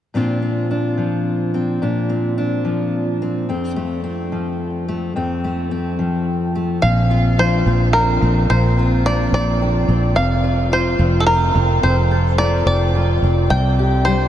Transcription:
0.14 A#2 F3 C4 D4 F4
0.42 C4
0.71 D4
0.97 F3
1.54 C4
1.82 A#2 D4
2.10 C4
2.38 D4
2.65 F3
3.22 C4
3.49 F2 C4
3.76 A3
4.04 C4
4.32 F3
4.88 A3
5.16 F2 C4
5.44 A3
5.71 C4
5.99 F3
6.55 A3
6.82 A#1 A#2 C4 F5
7.11 F4
7.38 F3 D4 C5
7.66 A#1 C4
7.93 F2 D4 A#4
8.22 A#1 C4
8.50 A#1 A#2 C4 C5
8.79 F4
9.06 F3 D4 D5
9.32 A#1 C4 D5
9.61 F2 D4
9.88 A#1 C4
10.16 F1 F2 C4 F5
10.44 F4
10.72 F4 C5
10.99 F1 C4
11.20 A4
11.26 F2 F4 A#4
11.55 F1 C4
11.82 F1 F2 C4 C5
12.11 A4
12.38 A3 F4 D5
12.66 F1 C4 D5
12.95 F2 F4
13.22 F1 C4
13.50 C2 C3 C4 G5
13.79 G4
14.05 G3 D4 C5

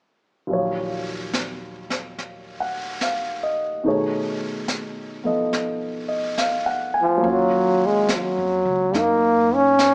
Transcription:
0.47 D#2 A#2 F3 F#3, brush sweep
0.53 C#5
1.33 snare, hi-hat pedal
1.90 snare
2.18 brush sweep, snare
2.60 F#5
3.01 F5, snare, hi-hat pedal
3.43 D#5
3.84 B2 D#3 A3 D#4 G#4, brush sweep
3.88 C#5
4.68 snare, hi-hat pedal
5.24 F3 B3 A4 D#5
5.53 brush sweep, snare
6.08 D#5
6.38 F5, snare, hi-hat pedal
6.66 F#5
6.94 G#5
7.01 F3
7.17 F#3 A#3
7.24 D#2 C#4, brush sweep
7.28 F#3 F4
7.86 G#3
8.09 snare, hi-hat pedal
8.15 F#3
8.38 F2
8.65 C#2
8.92 F#2 A#3 D#4, brush sweep, snare
8.99 A#3
9.55 C#4
9.79 snare, hi-hat pedal

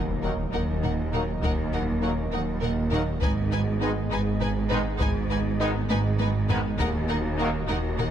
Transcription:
Already playing: D#1 D#2 F#3 A#3 A#4 D#5, impact
0.23 D#3 F#3 A#3 D#4 A#4 F#5
0.52 D#2 D#4 A#4 F#5
0.83 D#4 A#4 F#5, taiko low-mid
1.11 D#3 F#3 A#3 D#4 A#4 F#5, taiko low-mid
1.43 D#2 D#4 A#4 F#5, taiko
1.73 D#4 A#4 F#5
2.01 D#3 F#3 A#3 D#4 A#4 F#5
2.32 D#2 D#4 A#4 F#5
2.61 D#4 A#4 F#5, taiko low-mid
2.91 D#3 F#3 A#3 D#4 A#4 F#5, taiko low-mid
3.21 G#1 G#2 D#3 B3 D#4 G#4 B4 D#5 G#5, taiko
3.51 D#4 B4 G#5
3.80 D#3 G#3 B3 D#4 B4 G#5
4.11 G#1 G#2 D#4 B4 G#5
4.40 D#4 B4 G#5, taiko low-mid
4.69 D#3 G#3 B3 D#4 B4 G#5, taiko low-mid
4.99 G#1 G#2 D#4 B4 G#5, taiko
5.30 D#4 B4 G#5, taiko rim
5.60 D#3 G#3 B3 D#4 B4 G#5
5.89 G#1 G#2 D#4 B4 G#5, taiko high
6.19 D#4 B4 G#5, taiko high
6.49 D#3 G#3 B3 D#4 B4 G#5, taiko low
6.79 D#1 D#2 D#3 A#3 D#4 F#4 A#4 D#5 F#5, taiko
7.08 D#4 A#4 F#5
7.38 D#3 F#3 A#3 D#4 A#4 F#5
7.68 D#2 D#4 A#4 F#5, taiko rim
7.98 D#4 A#4 F#5, taiko low-mid

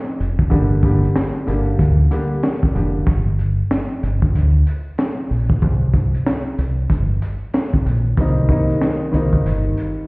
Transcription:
Already playing: D#3 G3 A#3 C4 D#4
0.20 F1, closed hi-hat
0.39 kick
0.50 G1 D3 G3 A#3 D4 G4, kick, closed hi-hat
0.83 D3 G3 A#3 D4 G4, kick, closed hi-hat
1.03 closed hi-hat
1.16 snare, closed hi-hat
1.47 G1 D3 G3 A#3 D4 G4, closed hi-hat
1.79 D2, kick, closed hi-hat
2.11 D3 G3 A#3 D4 G4, closed hi-hat
2.43 snare, closed hi-hat
2.63 kick
2.74 F1 D3 G3 A#3 D4 G4, closed hi-hat
3.07 G1, kick, closed hi-hat
3.39 closed hi-hat
3.71 snare, closed hi-hat
4.03 G1, closed hi-hat
4.22 kick
4.35 D2, closed hi-hat
4.67 closed hi-hat
4.98 snare, closed hi-hat
5.31 A#1, open hi-hat
5.50 kick
5.62 C2, kick, closed hi-hat
5.94 kick, closed hi-hat
6.14 closed hi-hat
6.26 snare, closed hi-hat
6.58 C2, closed hi-hat
6.90 G1, kick, closed hi-hat
7.22 closed hi-hat
7.54 snare, closed hi-hat
7.74 kick
7.86 A#1, closed hi-hat
8.17 C2 D#3 G3 A#3 C4 D#4, kick, closed hi-hat
8.49 D#3 G3 A#3 C4 D#4, kick, closed hi-hat
8.69 closed hi-hat
8.82 snare, closed hi-hat
9.12 C2 D#3 G3 A#3 C4 D#4, closed hi-hat
9.33 kick
9.46 G1, closed hi-hat
9.77 closed hi-hat

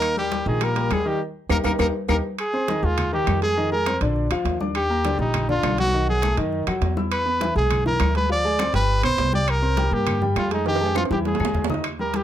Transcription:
Already playing: D#2 D#3 A#3 D#4 A#4 D#5
0.02 high timbale, claves
0.17 G3 G4 A#4, high conga
0.32 high conga, high timbale
0.46 A#1 D#3 G#3 D#4 G#4 D#5, high conga
0.61 G3 A#3 G4 A#4, high conga, high timbale, claves
0.76 G3 G4 A#4, high conga, high timbale
0.91 D#2 G#3 G#4, high conga, high timbale, low timbale, claves
1.05 D#3 G3 D#4 G4 D#5
1.49 D#2 A#3 D#4 G4 A#4, high conga, high timbale, claves
1.64 D#2 A#3 D#4 G4 A#4, high conga, high timbale, claves
1.79 D#2 A#3 D#4 G4 A#4, high conga, high timbale, claves
2.09 D#2 A#3 D#4 G4 A#4, high conga, high timbale, claves
2.39 G#4, high conga, high timbale, claves
2.53 C4 C5 C6, high conga
2.68 D#3 D#4 D#5, high conga, high timbale, low timbale
2.83 D#2 G#3 F4 G#4 G#5, high conga
2.98 high conga, low conga, high timbale, claves
3.13 D#3 D#4 G4 D#5, high conga
3.27 F2, high conga, high timbale, low timbale, claves
3.42 G#3 G#4 G#5, high timbale
3.57 D#3 D#4 D#5, high conga
3.72 G#3 G#4 A#4 G#5, high conga
3.86 C4 C5 C6, high conga, high timbale, low timbale, claves
4.01 A#1 D3 D4 D5, high conga, high timbale
4.16 high conga
4.30 D2 F3 F4 F5, high conga, high timbale, claves
4.45 D#2, high conga, high timbale, low timbale
4.60 D4 D5 D6, high conga
4.75 G4, high conga, high timbale, claves
4.90 A#3 A#4 A#5, high conga
5.05 D3 D4 D5, high conga, high timbale, low timbale
5.19 A#1 G3 D#4 G4 G5, high conga
5.34 high conga, low conga, high timbale, claves
5.49 D3 D4 F4 D5, high conga, low conga
5.63 B1, high conga, high timbale, low timbale, claves
5.78 F#3 F#4 F#5, high conga, high timbale
5.93 D#3 D#4 D#5, high conga
6.08 F#3 F#4 G#4 F#5, high conga
6.22 A3 A4 A5, high conga, high timbale, low timbale, claves
6.37 F#2 D#3 D#4 D#5, high conga, high timbale
6.52 high conga
6.67 F2 F#3 F#4 F#5, high conga, high timbale, claves
6.81 E2, high conga, high timbale, low timbale
6.97 E4 E5 E6, high conga
7.12 B4, high timbale, claves
7.26 B3 B4 B5, high conga
7.41 E3 E4 E5, high conga, high timbale, low timbale
7.55 B1 G#3 G#4 G#5, high conga
7.71 high conga, low conga, high timbale, claves
7.86 E3 E4 A#4 E5, high conga, low conga
8.00 D2, high conga, high timbale, low timbale, claves
8.15 G#3 G#4 B4 G#5, high conga, high timbale
8.29 F3 F4 D5 F5, high conga
8.44 G#3 G#4 G#5, high conga
8.59 C4 C5 C6, high conga, high timbale, low timbale, claves
8.73 G1 G3 G4 B4 G5, high timbale
8.89 high conga
9.03 B1 B3 B4 C5 B5, high conga, high timbale, claves
9.18 C2, high conga, high timbale, low timbale
9.33 G4 D5 G5 G6, high conga
9.48 A#4, high conga, high timbale, claves
9.62 C4 C5 C6, high conga
9.77 G3 G4 G5, high conga, high timbale, low timbale
9.91 G2 A#3 G4 A#4 A#5, high conga
10.07 high conga, low conga, high timbale, claves
10.22 G3 G4 G5, high conga, low conga
10.36 F2 F4, high conga, high timbale, low timbale, claves
10.51 G#3 D#4 G#4 G#5, high timbale
10.66 D#3 D#4 G4 D#5, high conga, high timbale
10.76 high timbale
10.81 G#3 G#4 G#5, high conga
10.86 high timbale
10.95 C4 F4 C5 C6, high conga, high timbale, claves
11.05 high timbale
11.11 E2 E3 E4 G4 E5, high conga
11.25 G#4, high conga, low timbale
11.35 low timbale
11.39 E2 G#3 G#4 G#5, low conga, claves
11.45 low timbale
11.54 D#2, low conga, low timbale
11.64 low timbale
11.70 D#4 D#5 D#6, low conga
11.74 low timbale
11.84 high conga, high timbale, claves
11.99 G3 G4 A#4, high conga
12.14 G4, high conga, high timbale, low timbale

